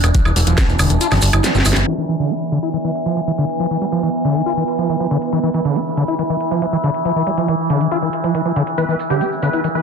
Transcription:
0.00 0.11 E1 medium
0.00 1.86 E3 medium
0.00 1.89 D4 medium
0.00 closed hi-hat medium
0.00 high woodblock soft
0.04 maracas soft
0.14 0.21 F3 medium
0.14 kick loud
0.14 closed hi-hat medium
0.14 maracas soft
0.25 0.32 E1 medium
0.25 0.32 E3 medium
0.25 high woodblock medium
0.25 maracas soft
0.36 0.43 E1 loud
0.36 0.40 G3 medium
0.36 open hi-hat loud
0.36 maracas medium
0.47 0.54 E1 medium
0.47 0.57 F3 medium
0.47 closed hi-hat medium
0.47 maracas soft
0.58 kick loud
0.58 snare loud
0.58 closed hi-hat medium
0.58 high woodblock soft
0.58 maracas medium
0.69 0.75 E1 medium
0.69 maracas soft
0.79 0.86 E1 loud
0.79 0.92 D3 loud
0.79 open hi-hat loud
0.79 high woodblock medium
0.79 maracas medium
0.89 0.97 E1 medium
0.89 0.97 E3 loud
0.89 closed hi-hat medium
0.89 maracas soft
1.01 1.08 F4 loud
1.01 closed hi-hat medium
1.01 maracas medium
1.11 1.19 G1 medium
1.11 1.18 E3 medium
1.11 snare soft
1.11 open hi-hat medium
1.11 high woodblock soft
1.11 maracas soft
1.22 1.29 G1 loud
1.22 open hi-hat loud
1.22 maracas loud
1.33 1.40 G1 medium
1.33 1.46 E4 medium
1.33 closed hi-hat medium
1.33 high woodblock medium
1.33 maracas soft
1.44 1.51 E3 medium
1.44 snare medium
1.44 closed hi-hat medium
1.44 maracas medium
1.55 1.62 G1 medium
1.55 1.59 G3 loud
1.55 snare medium
1.55 maracas soft
1.65 1.73 G1 loud
1.65 1.70 E4 medium
1.65 open hi-hat loud
1.65 high woodblock soft
1.65 maracas loud
1.73 1.83 G1 medium
1.73 1.80 E3 loud
1.73 snare loud
1.73 closed hi-hat medium
1.73 maracas soft
1.87 1.94 E3 loud
1.87 9.82 E3 medium
1.87 5.35 B3 medium
1.87 closed hi-hat medium
1.98 2.05 E3 loud
2.09 2.15 E3 loud
2.09 closed hi-hat medium
2.20 2.32 D3 loud
2.20 closed hi-hat medium
2.30 2.34 E4 loud
2.30 closed hi-hat medium
2.52 2.59 D3 loud
2.52 closed hi-hat medium
2.63 2.69 E4 medium
2.63 closed hi-hat medium
2.73 2.77 E3 medium
2.73 closed hi-hat medium
2.84 2.91 E3 medium
2.95 closed hi-hat medium
3.06 3.16 F3 medium
3.06 closed hi-hat medium
3.17 3.21 F3 medium
3.17 closed hi-hat medium
3.27 3.31 E3 loud
3.38 3.45 D3 loud
3.38 closed hi-hat medium
3.49 closed hi-hat medium
3.60 3.67 F3 medium
3.60 closed hi-hat medium
3.71 3.77 E3 medium
3.81 3.85 G3 medium
3.81 closed hi-hat medium
3.92 4.02 F3 medium
3.92 closed hi-hat medium
4.03 4.10 E3 medium
4.03 closed hi-hat medium
4.25 4.37 D3 loud
4.25 closed hi-hat loud
4.35 4.42 E3 loud
4.35 closed hi-hat medium
4.46 4.53 F4 loud
4.46 closed hi-hat medium
4.57 4.64 E3 medium
4.68 closed hi-hat medium
4.79 4.89 F3 medium
4.79 closed hi-hat medium
4.89 4.96 E3 medium
4.89 closed hi-hat medium
5.00 5.07 F3 medium
5.11 5.18 D3 loud
5.11 closed hi-hat medium
5.22 closed hi-hat medium
5.33 5.39 E3 loud
5.33 8.80 E4 medium
5.33 closed hi-hat medium
5.43 5.50 E3 loud
5.54 5.61 E3 loud
5.54 closed hi-hat medium
5.65 5.77 D3 loud
5.65 closed hi-hat medium
5.76 5.80 E4 loud
5.76 closed hi-hat medium
5.97 6.04 D3 loud
5.97 closed hi-hat medium
6.08 6.15 E4 medium
6.08 closed hi-hat medium
6.19 6.23 E3 medium
6.19 closed hi-hat medium
6.30 6.36 E3 medium
6.40 closed hi-hat medium
6.51 6.61 F3 medium
6.51 closed hi-hat medium
6.62 6.66 F3 medium
6.62 closed hi-hat medium
6.73 6.77 E3 loud
6.84 6.90 D3 loud
6.84 closed hi-hat medium
6.94 closed hi-hat medium
7.05 7.12 F3 medium
7.05 closed hi-hat medium
7.16 7.23 E3 medium
7.27 7.31 G3 medium
7.27 closed hi-hat medium
7.38 7.48 F3 medium
7.38 closed hi-hat medium
7.48 7.55 E3 medium
7.48 closed hi-hat medium
7.70 7.82 D3 loud
7.70 closed hi-hat medium
7.81 7.87 E3 loud
7.81 closed hi-hat medium
7.91 7.98 F4 loud
7.91 closed hi-hat medium
8.02 8.09 E3 medium
8.13 closed hi-hat medium
8.24 8.34 F3 medium
8.24 closed hi-hat medium
8.35 8.41 E3 medium
8.35 closed hi-hat medium
8.45 8.52 F3 medium
8.56 8.63 D3 loud
8.56 closed hi-hat medium
8.67 closed hi-hat medium
8.78 8.84 E3 loud
8.78 9.82 B3 medium
8.78 8.96 B4 loud
8.78 closed hi-hat medium
8.78 maracas medium
8.89 8.95 E3 loud
8.89 maracas soft
8.99 closed hi-hat medium
8.99 maracas medium
9.10 9.22 D3 loud
9.10 9.29 G4 medium
9.10 closed hi-hat medium
9.10 maracas soft
9.21 9.25 E4 loud
9.21 closed hi-hat medium
9.21 maracas soft
9.32 maracas soft
9.42 9.49 D3 loud
9.42 9.61 B4 medium
9.42 closed hi-hat medium
9.42 maracas medium
9.53 9.60 E4 medium
9.53 closed hi-hat medium
9.53 maracas soft
9.64 9.68 E3 medium
9.64 closed hi-hat medium
9.64 maracas medium
9.75 9.82 E3 medium
9.75 9.82 B4 medium
9.75 maracas soft

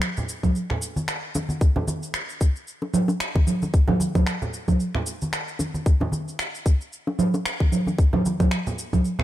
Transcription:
0.02 finger snap medium
0.02 shaker soft
0.17 low conga medium
0.17 shaker soft
0.29 shaker medium
0.43 kick medium
0.43 low conga medium
0.43 shaker soft
0.55 shaker soft
0.70 finger snap soft
0.70 low conga medium
0.82 shaker medium
0.96 high conga medium
0.96 shaker soft
1.08 finger snap loud
1.08 shaker soft
1.35 high bongo medium
1.35 high conga medium
1.35 shaker medium
1.49 high conga medium
1.49 shaker soft
1.61 kick loud
1.61 shaker soft
1.76 high bongo medium
1.76 high conga medium
1.76 low conga medium
1.88 high conga medium
1.88 shaker medium
2.03 shaker soft
2.14 finger snap medium
2.14 shaker soft
2.29 shaker soft
2.41 kick loud
2.41 shaker medium
2.56 shaker soft
2.68 shaker soft
2.82 high bongo medium
2.94 low conga medium
2.94 shaker medium
3.08 high bongo medium
3.08 shaker soft
3.20 finger snap loud
3.20 shaker soft
3.35 kick loud
3.35 high conga medium
3.47 low conga medium
3.47 shaker medium
3.62 high bongo soft
3.62 high conga medium
3.62 shaker soft
3.74 kick loud
3.74 shaker soft
3.88 high bongo medium
3.88 high conga medium
3.88 low conga medium
4.00 high conga medium
4.00 shaker medium
4.15 kick medium
4.15 low conga medium
4.15 shaker soft
4.27 finger snap medium
4.27 shaker soft
4.42 low conga medium
4.42 shaker soft
4.53 shaker medium
4.68 kick medium
4.68 low conga medium
4.68 shaker soft
4.80 shaker soft
4.95 finger snap soft
4.95 low conga medium
5.06 shaker medium
5.22 high conga medium
5.22 shaker soft
5.33 finger snap loud
5.33 shaker soft
5.48 shaker soft
5.59 high bongo medium
5.59 high conga medium
5.59 shaker medium
5.74 high conga medium
5.74 shaker soft
5.86 kick loud
5.86 shaker soft
6.00 high bongo medium
6.00 high conga medium
6.00 low conga medium
6.12 high conga medium
6.12 shaker medium
6.28 shaker soft
6.39 finger snap medium
6.39 shaker soft
6.55 shaker soft
6.66 kick loud
6.66 shaker medium
6.81 shaker soft
6.93 shaker soft
7.07 high bongo medium
7.19 low conga medium
7.19 shaker medium
7.34 high bongo medium
7.34 shaker soft
7.46 finger snap medium
7.46 shaker soft
7.60 kick loud
7.60 high conga medium
7.72 low conga medium
7.72 shaker medium
7.87 high bongo soft
7.87 high conga medium
7.87 shaker soft
7.99 kick loud
7.99 shaker soft
8.13 high bongo medium
8.13 high conga medium
8.13 low conga medium
8.26 high conga medium
8.26 shaker medium
8.40 kick medium
8.40 low conga medium
8.40 shaker soft
8.51 finger snap medium
8.51 shaker soft
8.67 low conga medium
8.67 shaker soft
8.79 shaker medium
8.93 kick medium
8.93 low conga medium
8.93 shaker soft
9.05 shaker soft
9.19 finger snap soft
9.19 low conga medium

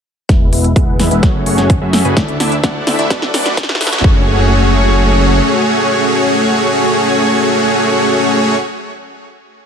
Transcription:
0.29 0.50 E1 medium
0.29 0.50 G#3 medium
0.29 0.50 B3 medium
0.29 0.50 E4 medium
0.29 0.50 B4 medium
0.29 0.50 E5 medium
0.29 kick loud
0.29 snare soft
0.29 closed hi-hat medium
0.53 0.74 E1 loud
0.53 0.67 G#3 medium
0.53 0.67 B3 medium
0.53 0.67 E4 medium
0.53 0.67 B4 medium
0.53 0.67 E5 medium
0.53 open hi-hat loud
0.64 closed hi-hat medium
0.76 0.97 E1 loud
0.76 0.97 G#3 loud
0.76 0.97 B3 medium
0.76 0.97 E4 medium
0.76 0.97 B4 medium
0.76 0.97 F#5 loud
0.76 kick loud
0.76 closed hi-hat medium
0.99 1.09 E2 loud
0.99 1.08 G#3 medium
0.99 1.08 B3 medium
0.99 1.08 E4 medium
0.99 1.08 B4 medium
0.99 1.08 E5 medium
0.99 snare medium
0.99 open hi-hat medium
1.11 1.21 E1 loud
1.11 1.20 G#3 medium
1.11 1.20 B3 medium
1.11 1.20 E4 medium
1.11 1.20 B4 medium
1.11 1.20 E5 loud
1.11 closed hi-hat medium
1.23 1.44 F#1 medium
1.23 1.43 A3 loud
1.23 1.43 C#4 medium
1.23 1.43 G#4 medium
1.23 1.43 C#5 loud
1.23 kick loud
1.23 snare medium
1.23 closed hi-hat medium
1.46 1.79 F#1 loud
1.46 1.69 A3 medium
1.46 1.69 C#4 medium
1.46 1.69 F#4 medium
1.46 1.69 G#4 medium
1.46 1.69 C#5 loud
1.46 open hi-hat loud
1.58 snare medium
1.58 closed hi-hat medium
1.70 kick loud
1.70 closed hi-hat medium
1.81 2.03 F#2 medium
1.81 2.02 A3 medium
1.81 2.02 C#4 medium
1.81 2.02 F#4 medium
1.81 2.02 G#4 medium
1.81 2.02 E5 loud
1.93 snare medium
1.93 open hi-hat medium
2.05 2.14 F#1 loud
2.05 2.14 A3 medium
2.05 2.14 C#4 medium
2.05 2.14 F#4 medium
2.05 2.14 G#4 medium
2.05 2.14 B4 medium
2.05 closed hi-hat medium
2.17 2.38 D2 loud
2.17 2.37 A3 medium
2.17 2.37 D4 medium
2.17 2.37 E4 medium
2.17 2.37 D5 medium
2.17 2.37 E5 medium
2.17 kick loud
2.17 snare medium
2.17 closed hi-hat medium
2.28 closed hi-hat soft
2.40 2.61 D2 loud
2.40 2.54 A3 medium
2.40 2.54 D4 medium
2.40 2.54 E4 medium
2.40 2.54 D5 medium
2.40 2.54 E5 medium
2.40 snare medium
2.40 open hi-hat loud
2.52 closed hi-hat medium
2.64 2.85 D2 loud
2.64 2.84 A3 loud
2.64 2.84 D4 medium
2.64 2.84 E4 medium
2.64 2.84 D5 medium
2.64 2.84 F#5 loud
2.64 kick loud
2.64 snare medium
2.64 closed hi-hat medium
2.87 2.96 D2 loud
2.87 2.96 A3 medium
2.87 2.96 D4 medium
2.87 2.96 E4 medium
2.87 2.96 D5 medium
2.87 2.96 E5 medium
2.87 snare medium
2.87 open hi-hat medium
2.99 3.08 D2 loud
2.99 3.08 A3 medium
2.99 3.08 D4 medium
2.99 3.08 E4 medium
2.99 3.08 D5 medium
2.99 3.08 E5 loud
2.99 closed hi-hat medium
3.10 3.32 B1 loud
3.10 3.30 B4 medium
3.10 kick loud
3.10 snare medium
3.10 closed hi-hat medium
3.22 snare medium
3.34 3.67 B1 loud
3.34 3.56 A3 medium
3.34 3.56 D4 medium
3.34 3.56 F#4 medium
3.34 3.56 B4 medium
3.34 3.56 D5 loud
3.34 snare loud
3.34 open hi-hat loud
3.46 snare medium
3.46 closed hi-hat medium
3.57 kick loud
3.57 snare loud
3.57 closed hi-hat medium
3.63 snare medium
3.69 3.90 B1 loud
3.69 3.90 A3 medium
3.69 3.90 D4 medium
3.69 3.90 F#4 medium
3.69 3.90 B4 medium
3.69 3.90 E5 loud
3.69 snare loud
3.75 snare loud
3.81 snare loud
3.81 open hi-hat loud
3.87 snare loud
3.93 4.02 B1 loud
3.93 4.01 A3 medium
3.93 4.02 D4 medium
3.93 4.02 F#4 medium
3.93 4.01 B4 medium
3.93 4.02 C#5 medium
3.93 snare medium
3.93 closed hi-hat medium
3.98 snare loud
4.04 5.41 F#1 loud
4.04 8.55 A3 medium
4.04 8.55 C#4 medium
4.04 8.55 F#4 medium
4.04 8.55 G#4 medium
4.04 8.55 C#5 medium
4.04 kick loud

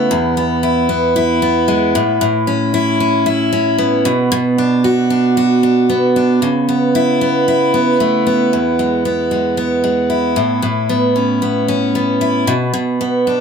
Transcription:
0.00 0.12 C#3 medium
0.00 0.16 A3 medium
0.00 0.37 B3 medium
0.00 0.63 E4 medium
0.11 1.95 E2 medium
0.37 0.89 B3 medium
0.63 1.15 E4 medium
0.89 1.42 B3 medium
1.16 2.73 E4 medium
1.42 2.24 B3 medium
1.68 2.00 G#3 medium
1.95 2.20 A2 medium
2.21 4.05 A2 medium
2.47 2.99 C#4 medium
2.74 3.25 E4 medium
3.00 3.51 C#4 medium
3.26 4.11 E4 medium
3.53 4.11 C#4 medium
3.78 5.89 B3 medium
4.05 4.30 B2 medium
4.32 6.42 B2 medium
4.58 5.09 D4 medium
4.84 5.36 F#4 medium
5.10 5.62 D4 medium
5.37 6.47 F#4 medium
5.63 6.15 D4 medium
5.89 6.69 B3 medium
6.16 6.48 D4 medium
6.42 8.52 C#3 medium
6.69 7.21 B3 medium
6.95 7.48 E4 medium
7.21 7.74 B3 medium
7.48 10.09 E4 medium
7.74 8.26 B3 medium
8.00 8.58 A3 medium
8.27 9.05 B3 medium
8.53 10.37 E2 medium
8.79 9.30 G#3 soft
9.05 9.57 B3 medium
9.31 9.82 G#3 soft
9.57 10.65 B3 medium
9.84 10.42 G#3 medium
10.10 12.21 E4 medium
10.36 10.61 A2 medium
10.62 12.47 A2 medium
10.89 11.42 B3 medium
11.16 11.67 C#4 medium
11.42 11.95 B3 medium
11.68 12.53 C#4 medium
11.95 13.00 B3 medium
12.21 12.53 E4 medium
12.47 12.72 B2 medium
12.74 13.40 B2 medium
13.01 13.40 B3 medium
13.27 13.40 D4 medium

